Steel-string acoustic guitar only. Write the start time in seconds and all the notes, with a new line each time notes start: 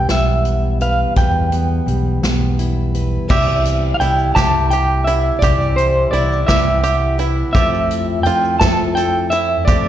Already playing: E2 G3 B3 E4 B4
0.10 B3
0.81 B4
1.16 E2 B4
1.52 B3
1.86 G3
2.24 B3
2.59 E4
2.95 B4